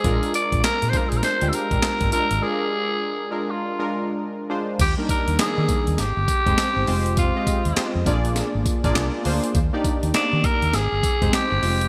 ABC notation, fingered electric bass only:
X:1
M:4/4
L:1/16
Q:"Swing 16ths" 1/4=101
K:Bbmix
V:1 name="Fingered electric bass" clef=bass
B,,, z2 B,,, z B,, z B,,, z D,, z B,,, z A,,, z A,,, | z16 | E,, z2 E,, z E, z E,, A,,, G,,, z F,,, z G,,, F,,,2- | F,,,2 z E,, z F,, B,,,3 A,,, z B,,, C,, z D,, z |
E,, z2 E,, z E, z E,, A,,, G,,, z F,,, z G,,, F,,,2 |]